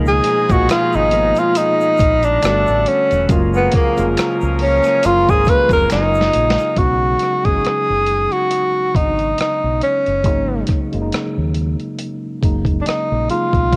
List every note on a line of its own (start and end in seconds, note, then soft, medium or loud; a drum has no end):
0.00 0.19 C#2 medium
0.00 0.43 B2 medium
0.00 0.43 F3 medium
0.00 1.95 F3 medium
0.00 0.43 G#3 medium
0.00 1.95 G#3 medium
0.00 0.44 A#3 medium
0.00 0.44 D#4 loud
0.00 1.95 D#4 medium
0.00 1.95 G#4 medium
0.00 2.40 D#5 medium
0.00 2.40 F5 medium
0.00 2.40 A#5 medium
0.00 2.40 B5 medium
0.06 0.53 G#4 medium
0.06 shaker soft
0.24 cross-stick soft
0.24 closed hi-hat medium
0.49 0.66 A#1 medium
0.49 1.07 B2 medium
0.49 1.07 F3 medium
0.49 1.08 G#3 medium
0.49 1.08 A#3 medium
0.49 1.08 F4 medium
0.49 0.70 F#4 loud
0.49 kick loud
0.49 closed hi-hat soft
0.49 shaker medium
0.69 0.97 F4 medium
0.69 finger snap medium
0.69 cross-stick loud
0.69 closed hi-hat medium
0.69 shaker medium
0.93 1.31 G#1 medium
0.93 1.41 D#4 medium
0.93 shaker soft
1.11 2.42 F3 medium
1.11 2.43 G#3 medium
1.11 2.43 A#3 medium
1.11 2.42 B3 medium
1.11 2.44 D#4 medium
1.11 closed hi-hat medium
1.35 1.59 F4 medium
1.35 closed hi-hat soft
1.35 shaker soft
1.55 2.26 D#4 loud
1.55 closed hi-hat loud
1.55 shaker medium
1.81 shaker soft
1.97 2.37 A#1 loud
1.97 kick medium
1.97 closed hi-hat medium
1.97 shaker soft
2.23 2.89 D4 loud
2.23 closed hi-hat soft
2.23 shaker soft
2.42 2.64 G1 loud
2.42 3.23 D3 medium
2.42 2.85 F#3 medium
2.42 3.23 G3 medium
2.42 2.85 A3 medium
2.42 3.23 A3 medium
2.42 3.24 B3 medium
2.42 2.85 D4 medium
2.42 3.24 F#4 medium
2.42 2.85 A4 medium
2.42 3.29 A4 medium
2.42 3.29 F#5 medium
2.42 3.29 A5 medium
2.42 3.28 B5 medium
2.42 finger snap medium
2.42 cross-stick loud
2.42 closed hi-hat medium
2.42 shaker medium
2.67 2.84 A1 medium
2.67 shaker soft
2.86 3.26 C#4 medium
2.86 closed hi-hat medium
3.11 3.28 E1 medium
3.11 closed hi-hat soft
3.11 shaker medium
3.29 3.67 F#1 loud
3.29 3.91 C#3 loud
3.29 6.30 F3 medium
3.29 3.91 F#3 loud
3.29 3.92 G#3 medium
3.29 6.29 A#3 medium
3.29 3.92 A#3 medium
3.29 6.29 C#4 medium
3.29 3.92 F4 loud
3.29 6.74 G#4 medium
3.29 6.29 A#4 medium
3.29 6.74 F5 medium
3.29 6.74 G#5 medium
3.29 6.74 A#5 medium
3.29 kick loud
3.29 closed hi-hat medium
3.29 shaker medium
3.54 3.73 B3 medium
3.54 shaker soft
3.72 4.14 A#3 medium
3.72 kick loud
3.72 cross-stick soft
3.72 closed hi-hat medium
3.96 4.15 F1 medium
3.96 5.35 C#3 medium
3.96 5.35 F#3 medium
3.96 5.36 G#3 medium
3.96 5.36 A#3 medium
3.96 5.37 F4 medium
3.96 closed hi-hat soft
3.96 shaker medium
4.17 finger snap medium
4.17 cross-stick loud
4.17 closed hi-hat medium
4.17 shaker medium
4.41 4.79 C#2 medium
4.41 shaker soft
4.59 5.07 C#4 medium
4.59 open hi-hat soft
4.83 cross-stick soft
4.83 closed hi-hat soft
4.83 shaker medium
5.03 5.25 F#1 loud
5.03 5.31 F4 loud
5.03 closed hi-hat loud
5.03 shaker medium
5.28 5.45 G#1 medium
5.28 5.51 G#4 loud
5.28 kick medium
5.28 shaker soft
5.45 6.67 C#3 medium
5.45 6.67 F#3 medium
5.45 6.68 G#3 medium
5.45 6.68 A#3 medium
5.45 kick loud
5.45 closed hi-hat medium
5.45 shaker soft
5.49 6.69 F4 medium
5.49 5.72 B4 loud
5.69 5.87 F1 medium
5.69 5.90 A#4 loud
5.69 kick medium
5.69 closed hi-hat soft
5.69 shaker soft
5.90 6.28 F#1 medium
5.90 6.80 D#4 medium
5.90 finger snap medium
5.90 snare medium
5.90 closed hi-hat medium
5.90 shaker medium
6.14 shaker soft
6.21 snare medium
6.33 6.56 A#1 medium
6.33 closed hi-hat medium
6.50 snare loud
6.58 closed hi-hat soft
6.58 shaker medium
6.76 7.15 B1 medium
6.76 7.39 C#3 medium
6.76 7.39 F#3 medium
6.76 7.40 G#3 medium
6.76 7.40 B3 medium
6.76 7.46 F#4 medium
6.76 kick medium
6.76 closed hi-hat medium
6.80 7.40 D#4 medium
7.19 cross-stick soft
7.19 closed hi-hat medium
7.45 7.62 G#1 medium
7.45 8.83 C#3 medium
7.45 8.84 F#3 medium
7.45 8.84 G#3 medium
7.45 8.84 B3 medium
7.45 7.52 C#4 medium
7.45 8.34 G#4 loud
7.45 kick medium
7.45 closed hi-hat soft
7.54 8.88 D#4 medium
7.64 muted fingered electric bass stroke soft
7.64 cross-stick medium
7.64 closed hi-hat medium
7.90 8.26 F#1 medium
8.06 closed hi-hat soft
8.32 8.98 F#4 medium
8.32 closed hi-hat soft
8.51 closed hi-hat medium
8.94 9.32 G#1 medium
8.94 10.15 C#3 medium
8.94 10.15 F#3 soft
8.94 10.16 G#3 soft
8.94 10.16 B3 soft
8.94 9.03 D4 soft
8.94 9.39 D#4 medium
8.94 kick medium
8.94 closed hi-hat medium
9.04 10.20 D#4 soft
9.19 closed hi-hat soft
9.38 9.80 D#4 medium
9.38 muted fingered electric bass stroke soft
9.38 cross-stick medium
9.38 closed hi-hat medium
9.64 9.80 B1 medium
9.82 10.65 C#4 medium
9.82 closed hi-hat soft
10.06 10.25 F#1 medium
10.06 closed hi-hat soft
10.24 10.62 G#1 medium
10.24 10.86 C#3 medium
10.24 10.87 F#3 medium
10.24 10.87 G#3 medium
10.24 10.87 A#3 medium
10.24 10.88 D#4 medium
10.24 kick medium
10.24 closed hi-hat medium
10.67 kick medium
10.67 cross-stick soft
10.67 closed hi-hat medium
10.92 11.10 F#1 medium
10.92 12.31 C#3 medium
10.92 12.31 F#3 medium
10.92 12.32 G#3 medium
10.92 12.32 A#3 medium
10.92 11.00 C#4 medium
10.92 closed hi-hat soft
11.02 12.36 D#4 medium
11.12 muted fingered electric bass stroke soft
11.12 cross-stick loud
11.12 closed hi-hat medium
11.38 11.74 D#2 medium
11.54 closed hi-hat soft
11.80 closed hi-hat soft
11.99 closed hi-hat medium
12.41 12.80 F#1 medium
12.41 13.22 C#3 medium
12.41 13.23 F#3 medium
12.41 13.23 G#3 medium
12.41 13.24 A#3 medium
12.41 13.24 D#4 medium
12.41 kick medium
12.41 closed hi-hat soft
12.65 kick medium
12.65 closed hi-hat soft
12.81 12.88 D4 medium
12.86 13.30 D#4 medium
12.86 muted fingered electric bass stroke soft
12.86 cross-stick medium
12.86 closed hi-hat medium
13.12 13.27 A#1 medium
13.29 13.69 C#3 medium
13.29 13.70 F#3 soft
13.29 13.70 G#3 medium
13.29 13.70 A#3 soft
13.29 13.71 D#4 medium
13.29 13.76 F4 medium
13.29 closed hi-hat medium
13.53 13.73 B1 medium
13.53 kick medium
13.53 closed hi-hat soft
13.72 13.76 C#2 medium
13.72 13.76 B2 medium
13.72 kick medium
13.72 closed hi-hat medium